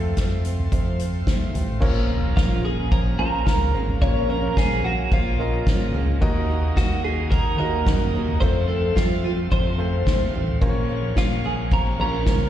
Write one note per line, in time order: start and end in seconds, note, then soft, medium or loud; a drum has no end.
0.00 0.14 F2 loud
0.00 0.15 F3 soft
0.00 0.16 A3 soft
0.00 1.84 A3 medium
0.00 0.17 C4 medium
0.00 1.84 C4 medium
0.00 0.17 F4 medium
0.00 1.81 F4 medium
0.00 1.80 A4 medium
0.00 1.84 A4 medium
0.00 1.80 C5 medium
0.00 1.80 F5 medium
0.00 1.80 C6 medium
0.17 0.69 F2 medium
0.17 0.45 F3 medium
0.17 0.45 A3 medium
0.17 0.44 C4 medium
0.17 0.44 F4 medium
0.17 kick medium
0.17 snare medium
0.17 closed hi-hat medium
0.45 0.71 F3 soft
0.45 0.72 A3 soft
0.45 0.72 C4 soft
0.45 0.72 F4 medium
0.45 closed hi-hat medium
0.58 floor tom medium
0.72 1.23 F2 medium
0.72 1.00 F2 medium
0.72 1.00 C3 medium
0.72 1.00 F3 medium
0.72 1.00 A3 medium
0.72 0.99 C4 medium
0.72 0.98 F4 medium
0.72 kick loud
0.72 closed hi-hat medium
0.99 1.26 F3 soft
0.99 1.27 A3 soft
0.99 1.27 C4 medium
0.99 1.27 F4 medium
0.99 closed hi-hat medium
1.27 1.53 D#2 medium
1.27 1.55 F3 medium
1.27 1.55 A3 medium
1.27 1.54 C4 medium
1.27 1.53 F4 medium
1.27 kick loud
1.27 snare loud
1.27 closed hi-hat medium
1.54 1.80 A1 loud
1.54 1.81 F3 soft
1.54 1.82 A3 soft
1.54 1.82 C4 medium
1.54 1.82 F4 medium
1.54 closed hi-hat medium
1.54 floor tom medium
1.68 floor tom medium
1.80 2.33 A#1 loud
1.80 2.60 A#2 medium
1.80 2.09 A#2 medium
1.80 2.10 F3 medium
1.80 2.66 A#3 medium
1.80 2.09 A#3 medium
1.80 2.67 C#4 medium
1.80 6.18 C#4 medium
1.80 2.09 C#4 medium
1.80 2.67 F4 medium
1.80 2.08 F4 medium
1.80 2.67 A#4 medium
1.80 8.37 A#4 medium
1.80 2.67 C#5 medium
1.80 6.17 F5 medium
1.80 6.18 A#5 medium
1.80 kick loud
1.80 crash loud
1.80 impact medium
2.09 2.37 A#3 medium
2.09 2.37 C#4 medium
2.09 2.37 F4 medium
2.09 floor tom medium
2.09 ride medium
2.37 3.15 A#1 loud
2.37 2.65 F3 medium
2.37 2.65 A#3 medium
2.37 2.64 C#4 medium
2.37 2.63 F4 medium
2.37 kick loud
2.37 snare loud
2.37 ride medium
2.64 2.91 A#3 soft
2.64 2.91 C#4 medium
2.64 2.92 F4 medium
2.64 2.91 G#4 medium
2.64 ride medium
2.92 3.19 A#2 medium
2.92 3.20 F3 loud
2.92 3.20 A#3 loud
2.92 3.19 C#4 medium
2.92 3.18 F4 medium
2.92 2.99 A#4 loud
2.92 kick loud
2.92 ride medium
3.19 3.45 A#1 loud
3.19 3.83 A#3 medium
3.19 3.45 A#3 soft
3.19 3.83 C#4 medium
3.19 3.46 C#4 soft
3.19 3.47 F4 medium
3.19 3.83 F4 medium
3.19 3.98 A#4 loud
3.19 3.84 A#4 medium
3.19 3.84 C5 medium
3.19 ride medium
3.46 3.73 C#2 medium
3.46 3.74 F3 medium
3.46 3.74 A#3 medium
3.46 3.74 C#4 medium
3.46 3.73 F4 medium
3.46 kick loud
3.46 snare loud
3.46 ride medium
3.74 4.00 G#1 loud
3.74 4.02 A#3 medium
3.74 4.02 C#4 medium
3.74 4.02 F4 medium
3.74 ride medium
3.88 floor tom medium
4.02 4.53 A#1 loud
4.02 4.80 A#2 medium
4.02 4.30 A#2 medium
4.02 4.30 F3 medium
4.02 4.87 A#3 medium
4.02 4.30 A#3 medium
4.02 4.87 C#4 medium
4.02 4.30 C#4 loud
4.02 4.87 F4 medium
4.02 4.28 F4 loud
4.02 4.88 A#4 medium
4.02 4.29 C#5 loud
4.02 4.88 C#5 medium
4.02 kick loud
4.29 4.57 A#3 soft
4.29 4.58 C#4 medium
4.29 4.57 F4 medium
4.29 4.55 A#4 medium
4.29 ride medium
4.43 ride soft
4.57 5.08 A#1 medium
4.57 4.85 F3 medium
4.57 4.85 A#3 medium
4.57 4.84 C#4 medium
4.57 4.83 F4 medium
4.57 4.84 G#4 loud
4.57 kick loud
4.57 snare loud
4.57 ride medium
4.84 5.11 A#3 soft
4.84 5.11 C#4 medium
4.84 5.12 F4 medium
4.84 5.13 F#4 medium
4.84 ride medium
5.12 5.63 A#1 medium
5.12 5.39 A#2 loud
5.12 5.39 F3 loud
5.12 5.40 A#3 medium
5.12 5.40 C#4 medium
5.12 5.39 F4 loud
5.12 5.91 F4 medium
5.12 kick loud
5.12 ride medium
5.39 6.03 A#3 medium
5.39 5.66 A#3 soft
5.39 6.03 C#4 medium
5.39 5.67 C#4 medium
5.39 6.03 F4 medium
5.39 5.67 F4 medium
5.39 6.04 A#4 medium
5.39 6.04 D#5 medium
5.39 ride medium
5.67 5.93 G#1 medium
5.67 5.94 F3 medium
5.67 5.95 A#3 medium
5.67 5.94 C#4 medium
5.67 5.93 F4 medium
5.67 kick loud
5.67 snare loud
5.67 ride medium
5.94 6.20 C#2 loud
5.94 6.21 A#3 soft
5.94 6.22 C#4 medium
5.94 6.22 F4 medium
5.94 ride medium
6.08 floor tom medium
6.21 6.73 D#2 loud
6.21 6.49 D#3 medium
6.21 7.00 D#3 medium
6.21 7.06 A#3 medium
6.21 6.50 A#3 medium
6.21 7.07 D#4 medium
6.21 6.50 D#4 medium
6.21 7.07 F#4 medium
6.21 6.48 F#4 loud
6.21 7.07 A#4 medium
6.21 8.40 D#5 medium
6.21 7.07 D#5 loud
6.21 8.39 F#5 medium
6.21 8.40 D#6 medium
6.21 kick loud
6.21 ride medium
6.49 6.76 A#3 soft
6.49 6.77 D#4 medium
6.49 6.77 F#4 medium
6.49 ride medium
6.63 ride soft
6.77 7.55 D#2 loud
6.77 7.04 D#3 medium
6.77 7.05 A#3 medium
6.77 7.04 D#4 medium
6.77 7.04 F#4 medium
6.77 7.03 F#4 medium
6.77 kick loud
6.77 snare loud
7.04 7.31 A#3 soft
7.04 7.32 D#4 medium
7.04 7.32 F#4 medium
7.04 7.33 G#4 medium
7.04 ride medium
7.31 7.60 D#3 medium
7.31 7.60 A#3 loud
7.31 7.59 D#4 loud
7.31 7.58 F#4 medium
7.31 7.57 A#4 loud
7.31 kick loud
7.31 ride medium
7.45 ride soft
7.58 7.85 D#2 loud
7.58 8.23 A#3 medium
7.58 7.86 A#3 soft
7.58 8.23 D#4 medium
7.58 7.87 D#4 medium
7.58 8.23 F#4 medium
7.58 7.87 F#4 medium
7.58 8.40 A#4 loud
7.58 8.23 A#4 medium
7.58 8.23 D#5 medium
7.58 ride medium
7.86 8.12 F#2 medium
7.86 8.14 D#3 medium
7.86 8.15 A#3 medium
7.86 8.14 D#4 medium
7.86 8.13 F#4 medium
7.86 kick loud
7.86 snare loud
8.14 8.43 D#2 loud
8.14 8.42 A#3 soft
8.14 8.42 D#4 medium
8.14 8.42 F#4 medium
8.14 ride medium
8.28 floor tom medium
8.40 8.69 F2 medium
8.40 8.93 F2 loud
8.40 8.69 C3 medium
8.40 8.69 F3 medium
8.40 9.27 A3 medium
8.40 8.69 A3 loud
8.40 9.27 C4 medium
8.40 8.68 C4 medium
8.40 9.27 F4 medium
8.40 8.67 F4 loud
8.40 10.59 A4 medium
8.40 9.27 A4 medium
8.40 8.67 C5 loud
8.40 10.59 C5 medium
8.40 9.27 C5 medium
8.40 12.49 F5 medium
8.40 10.59 C6 medium
8.40 kick loud
8.40 ride medium
8.68 8.95 F3 medium
8.68 8.95 A3 medium
8.68 8.96 C4 medium
8.68 8.96 F4 medium
8.68 8.94 A4 medium
8.68 ride medium
8.96 9.48 F2 medium
8.96 9.24 F3 medium
8.96 9.24 A3 medium
8.96 9.23 C4 medium
8.96 9.23 F4 loud
8.96 9.23 F4 medium
8.96 kick loud
8.96 snare loud
8.96 ride medium
9.24 9.51 F3 soft
9.24 9.51 A3 medium
9.24 9.51 C4 medium
9.24 9.52 F4 medium
9.24 9.32 F4 medium
9.24 ride medium
9.51 9.79 F2 medium
9.51 10.03 F2 loud
9.51 9.79 C3 medium
9.51 9.79 F3 medium
9.51 9.79 A3 loud
9.51 9.78 C4 medium
9.51 9.77 F4 loud
9.51 10.30 C5 loud
9.51 kick loud
9.51 ride medium
9.66 ride soft
9.78 10.05 F3 soft
9.78 10.42 A3 medium
9.78 10.06 A3 medium
9.78 10.43 C4 medium
9.78 10.07 C4 medium
9.78 10.06 F4 medium
9.78 10.43 F4 medium
9.78 10.43 A4 medium
9.78 10.43 C5 medium
9.78 ride medium
10.06 10.32 D#2 medium
10.06 10.34 F3 medium
10.06 10.34 A3 medium
10.06 10.33 C4 medium
10.06 10.32 F4 medium
10.06 kick loud
10.06 snare loud
10.34 10.60 A1 loud
10.34 10.61 F3 medium
10.34 10.62 A3 medium
10.34 10.62 C4 medium
10.34 10.61 F4 medium
10.34 ride medium
10.48 floor tom medium
10.61 11.13 A#1 loud
10.61 10.89 A#2 medium
10.61 11.40 A#2 medium
10.61 10.89 F3 medium
10.61 11.47 A#3 medium
10.61 10.89 A#3 medium
10.61 11.47 C#4 medium
10.61 10.89 C#4 loud
10.61 11.47 F4 medium
10.61 10.88 F4 loud
10.61 11.47 A#4 medium
10.61 12.49 A#4 medium
10.61 10.69 C5 medium
10.61 12.49 C#5 medium
10.61 12.49 C#6 medium
10.61 kick loud
10.61 ride medium
10.69 11.51 C#5 loud
10.89 11.16 A#3 soft
10.89 11.17 C#4 medium
10.89 11.17 F4 medium
10.89 ride medium
11.16 11.95 A#1 loud
11.16 11.44 F3 medium
11.16 11.44 A#3 medium
11.16 11.43 C#4 medium
11.16 11.46 F4 medium
11.16 11.43 F4 medium
11.16 kick loud
11.16 snare loud
11.16 ride medium
11.44 11.70 A#3 soft
11.44 11.71 C#4 medium
11.44 11.71 F4 medium
11.44 11.53 G#4 medium
11.44 ride medium
11.71 11.99 A#2 medium
11.71 11.99 F3 medium
11.71 11.99 A#3 medium
11.71 11.99 C#4 loud
11.71 11.98 F4 medium
11.71 11.80 A#4 medium
11.71 kick loud
11.71 ride medium
11.99 12.25 A#1 loud
11.99 12.49 A#3 medium
11.99 12.26 A#3 soft
11.99 12.49 C#4 medium
11.99 12.26 C#4 medium
11.99 12.27 F4 medium
11.99 12.49 F4 medium
11.99 12.49 A#4 medium
11.99 12.49 A#4 loud
11.99 12.49 C#5 medium
11.99 ride medium
12.26 12.49 C#2 medium
12.26 12.49 F3 medium
12.26 12.49 A#3 medium
12.26 12.49 C#4 medium
12.26 12.49 F4 medium
12.26 kick loud
12.26 snare loud
12.26 ride medium